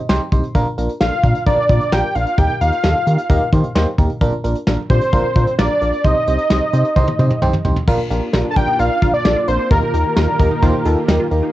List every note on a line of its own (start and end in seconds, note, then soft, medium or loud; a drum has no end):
0.09 0.19 C2 medium
0.09 0.21 C4 loud
0.09 0.21 D#4 loud
0.09 0.21 G4 loud
0.09 0.21 C5 loud
0.09 0.30 G5 medium
0.09 snare loud
0.32 0.42 C2 loud
0.32 0.44 C4 medium
0.32 0.44 D#4 medium
0.32 0.44 G4 medium
0.32 0.44 C5 medium
0.32 0.53 C6 medium
0.32 kick medium
0.32 closed hi-hat medium
0.43 closed hi-hat soft
0.55 0.65 A#1 loud
0.55 0.67 A#3 loud
0.55 0.67 D4 loud
0.55 0.67 F4 loud
0.55 0.67 A#4 loud
0.55 kick loud
0.55 closed hi-hat medium
0.78 0.88 A#1 medium
0.78 0.90 A#3 medium
0.78 0.90 D4 medium
0.78 0.90 F4 medium
0.78 0.90 A#4 loud
0.78 closed hi-hat medium
0.89 closed hi-hat medium
1.01 1.11 A#1 medium
1.01 1.13 A#3 medium
1.01 1.13 D4 medium
1.01 1.13 F4 medium
1.01 1.13 A4 medium
1.01 1.43 F5 loud
1.01 snare loud
1.23 1.34 A#2 loud
1.23 1.36 A#3 medium
1.23 1.36 D4 medium
1.23 1.36 F4 medium
1.23 1.36 A#4 medium
1.23 kick medium
1.23 closed hi-hat medium
1.35 closed hi-hat medium
1.46 1.57 A#1 medium
1.46 1.59 A#3 medium
1.46 1.59 D4 medium
1.46 1.59 F4 medium
1.46 1.59 A#4 loud
1.46 1.94 D5 loud
1.46 kick medium
1.46 closed hi-hat medium
1.69 1.80 A#2 loud
1.69 1.81 A#3 medium
1.69 1.81 D4 medium
1.69 1.82 F4 medium
1.69 1.82 A#4 medium
1.69 kick medium
1.69 closed hi-hat medium
1.81 closed hi-hat soft
1.92 2.03 A#1 loud
1.92 2.04 A#3 medium
1.92 2.04 D4 medium
1.92 2.04 F4 medium
1.92 2.04 A#4 loud
1.92 2.17 G5 loud
1.92 snare loud
2.15 2.26 A#1 loud
2.15 2.27 A#3 medium
2.15 2.27 D4 medium
2.15 2.27 F4 medium
2.15 2.27 A#4 medium
2.15 2.40 F5 loud
2.15 closed hi-hat medium
2.27 closed hi-hat soft
2.38 2.48 D#2 loud
2.38 2.50 A#3 medium
2.38 2.50 D#4 medium
2.38 2.50 G4 medium
2.38 2.50 A#4 loud
2.38 2.61 G5 loud
2.38 kick loud
2.38 closed hi-hat medium
2.61 2.71 D#2 loud
2.61 2.73 A#3 medium
2.61 2.73 D#4 medium
2.61 2.73 G4 medium
2.61 2.73 A#4 medium
2.61 3.49 F5 loud
2.61 closed hi-hat medium
2.72 closed hi-hat medium
2.84 2.94 D#2 loud
2.84 2.96 A#3 medium
2.84 2.96 D#4 medium
2.84 2.96 G4 medium
2.84 2.96 A4 medium
2.84 snare loud
3.07 3.17 D#3 loud
3.07 3.19 A#3 medium
3.07 3.19 D#4 medium
3.07 3.19 G4 medium
3.07 3.19 A#4 medium
3.07 closed hi-hat medium
3.18 closed hi-hat medium
3.30 3.40 D#2 loud
3.30 3.42 A#3 loud
3.30 3.42 D#4 loud
3.30 3.42 G4 loud
3.30 3.42 A#4 loud
3.30 kick medium
3.30 closed hi-hat medium
3.52 3.63 D#3 loud
3.52 3.65 A#3 medium
3.52 3.65 D#4 medium
3.52 3.65 G4 medium
3.52 3.65 C5 loud
3.52 kick medium
3.52 closed hi-hat medium
3.64 closed hi-hat soft
3.75 3.86 D#2 loud
3.75 3.88 A#3 loud
3.75 3.88 D#4 loud
3.75 3.88 G4 loud
3.75 3.88 C5 loud
3.75 snare loud
3.98 4.09 D#2 medium
3.98 4.11 A#3 medium
3.98 4.11 D#4 medium
3.98 4.11 G4 medium
3.98 4.11 A#4 medium
3.98 kick loud
3.98 closed hi-hat medium
4.10 closed hi-hat soft
4.21 4.32 A#1 loud
4.21 4.33 A#3 loud
4.21 4.33 D4 loud
4.21 4.33 F4 loud
4.21 4.33 A#4 loud
4.21 kick loud
4.21 closed hi-hat medium
4.44 4.55 A#1 loud
4.44 4.56 A#3 medium
4.44 4.56 D4 medium
4.44 4.56 F4 medium
4.44 4.56 A#4 medium
4.44 closed hi-hat medium
4.55 closed hi-hat medium
4.67 4.77 A#1 loud
4.67 4.79 A#3 medium
4.67 4.79 D4 medium
4.67 4.79 F4 medium
4.67 4.79 A#4 medium
4.67 snare loud
4.90 5.00 A#2 loud
4.90 5.02 A#3 medium
4.90 5.02 D4 medium
4.90 5.02 F4 medium
4.90 5.02 G4 medium
4.90 5.55 C5 medium
4.90 kick medium
4.90 closed hi-hat medium
5.01 closed hi-hat medium
5.13 5.23 A#1 loud
5.13 5.25 A#3 loud
5.13 5.25 D4 medium
5.13 5.25 F4 medium
5.13 5.25 A#4 loud
5.13 kick loud
5.13 closed hi-hat medium
5.36 5.46 A#2 medium
5.36 5.48 A#3 medium
5.36 5.48 D4 medium
5.36 5.48 F4 medium
5.36 5.48 A#4 medium
5.36 kick medium
5.36 closed hi-hat medium
5.47 closed hi-hat soft
5.59 5.69 A#1 loud
5.59 5.71 A#3 medium
5.59 5.71 D4 medium
5.59 5.71 F4 medium
5.59 5.71 A#4 loud
5.59 6.06 D5 loud
5.59 snare loud
5.82 5.92 A#1 loud
5.82 5.94 A#3 medium
5.82 5.94 D4 medium
5.82 5.94 F4 medium
5.82 5.94 A#4 medium
5.82 closed hi-hat medium
5.93 closed hi-hat soft
6.04 6.15 C2 loud
6.04 6.17 C4 medium
6.04 6.17 D#4 medium
6.04 6.17 G4 medium
6.04 6.17 C5 loud
6.04 7.42 D#5 loud
6.04 kick loud
6.04 closed hi-hat medium
6.27 6.38 C2 loud
6.27 6.40 C4 medium
6.27 6.40 D#4 medium
6.27 6.40 G4 medium
6.27 6.40 C5 medium
6.27 closed hi-hat medium
6.39 closed hi-hat medium
6.50 6.61 C2 loud
6.50 6.62 C4 medium
6.50 6.62 D#4 medium
6.50 6.62 G4 medium
6.50 6.62 C5 medium
6.50 snare loud
6.73 6.84 C3 loud
6.73 6.85 C4 medium
6.73 6.85 D#4 medium
6.73 6.85 G4 medium
6.73 6.85 C5 medium
6.73 closed hi-hat medium
6.85 closed hi-hat medium
6.96 7.07 C2 loud
6.96 7.08 C4 loud
6.96 7.08 D#4 loud
6.96 7.08 G4 loud
6.96 7.08 C5 loud
6.96 kick medium
6.96 high tom medium
7.07 high tom soft
7.19 7.29 C3 loud
7.19 7.31 C4 medium
7.19 7.31 D#4 medium
7.19 7.31 G4 medium
7.19 7.31 C5 loud
7.19 mid tom medium
7.30 mid tom medium
7.42 7.52 C2 loud
7.42 7.54 C4 loud
7.42 7.54 D#4 loud
7.42 7.54 G4 loud
7.42 7.54 C5 loud
7.42 mid tom medium
7.53 mid tom medium
7.65 7.75 C2 loud
7.65 7.77 C4 medium
7.65 7.77 D#4 medium
7.65 7.77 G4 medium
7.65 7.77 C5 loud
7.65 floor tom medium
7.76 floor tom medium
7.88 7.98 A#1 loud
7.88 11.52 A#3 medium
7.88 8.00 A#3 loud
7.88 9.69 D4 medium
7.88 8.00 D4 loud
7.88 9.69 F4 medium
7.88 8.08 F4 medium
7.88 8.00 F4 loud
7.88 8.00 A#4 loud
7.88 kick loud
7.88 crash medium
8.11 8.21 A#1 loud
8.11 8.23 A#3 medium
8.11 8.23 D4 medium
8.11 8.23 F4 medium
8.11 8.31 G4 medium
8.11 8.23 A#4 medium
8.11 closed hi-hat medium
8.33 8.44 A#1 loud
8.33 8.46 A#3 medium
8.33 8.46 D4 medium
8.33 8.46 F4 medium
8.33 8.44 F4 medium
8.33 8.46 A#4 loud
8.33 snare loud
8.33 closed hi-hat medium
8.45 8.65 D4 medium
8.51 8.58 A5 medium
8.56 8.67 A#1 loud
8.56 8.69 A#3 loud
8.56 8.69 D4 medium
8.56 8.69 F4 medium
8.56 8.69 A#4 loud
8.56 8.81 G5 loud
8.56 kick medium
8.56 closed hi-hat medium
8.68 8.78 D#4 medium
8.79 8.90 A#1 loud
8.79 8.91 A#3 medium
8.79 8.91 D4 medium
8.79 8.91 F4 medium
8.79 9.00 F4 medium
8.79 8.91 A#4 loud
8.79 9.13 F5 loud
8.79 closed hi-hat medium
9.02 9.13 A#1 loud
9.02 9.14 A#3 medium
9.02 9.14 D4 medium
9.02 9.14 F4 medium
9.02 9.23 F4 medium
9.02 9.14 A#4 medium
9.02 kick medium
9.02 closed hi-hat medium
9.14 9.46 D5 loud
9.25 9.35 A#1 loud
9.25 9.37 A#3 medium
9.25 9.35 D4 medium
9.25 9.37 D4 medium
9.25 9.37 F4 medium
9.25 9.37 A4 medium
9.25 snare loud
9.25 closed hi-hat medium
9.37 9.57 F4 medium
9.48 9.58 A#1 loud
9.48 9.60 A#3 medium
9.48 9.60 D4 medium
9.48 9.60 F4 medium
9.48 9.60 A#4 medium
9.48 9.69 C5 medium
9.48 closed hi-hat medium
9.59 9.70 D4 medium
9.71 9.81 D#2 loud
9.71 11.52 D#3 medium
9.71 9.83 A#3 medium
9.71 9.83 D#4 medium
9.71 11.52 F4 medium
9.71 9.91 F4 medium
9.71 11.52 G4 medium
9.71 9.83 G4 medium
9.71 9.83 A#4 loud
9.71 9.92 A#4 loud
9.71 kick loud
9.71 closed hi-hat medium
9.94 10.04 D#2 medium
9.94 10.06 A#3 medium
9.94 10.06 D#4 medium
9.94 10.14 G4 medium
9.94 10.06 G4 medium
9.94 10.06 A#4 medium
9.94 11.27 A#4 medium
9.94 closed hi-hat medium
10.17 10.27 D#2 loud
10.17 10.29 A#3 medium
10.17 10.29 D#4 medium
10.17 10.27 F4 medium
10.17 10.29 G4 medium
10.17 10.29 A#4 medium
10.17 snare loud
10.17 closed hi-hat medium
10.28 10.49 D4 medium
10.39 10.50 D#2 medium
10.39 10.52 A#3 medium
10.39 10.52 D#4 medium
10.39 10.52 G4 medium
10.39 10.52 A#4 loud
10.39 kick medium
10.39 closed hi-hat medium
10.51 10.61 D#4 medium
10.62 10.73 D#2 loud
10.62 10.75 A#3 loud
10.62 10.75 D#4 loud
10.62 10.83 F4 medium
10.62 10.75 G4 loud
10.62 10.75 C5 loud
10.62 kick loud
10.62 closed hi-hat medium
10.85 10.96 D#2 loud
10.85 10.98 A#3 medium
10.85 10.98 D#4 medium
10.85 11.06 F4 medium
10.85 10.98 G4 medium
10.85 10.98 A4 loud
10.85 closed hi-hat medium
11.08 11.19 D#2 loud
11.08 11.20 A#3 medium
11.08 11.20 D#4 medium
11.08 11.19 D#4 medium
11.08 11.20 G4 medium
11.08 11.20 A#4 loud
11.08 11.30 A#5 medium
11.08 snare loud
11.08 closed hi-hat medium
11.20 11.40 F4 medium
11.31 11.42 D#2 medium
11.31 11.43 A#3 medium
11.31 11.43 D#4 medium
11.31 11.43 G4 medium
11.31 11.43 A#4 loud
11.31 11.52 F5 medium
11.31 closed hi-hat medium
11.43 11.52 D#4 medium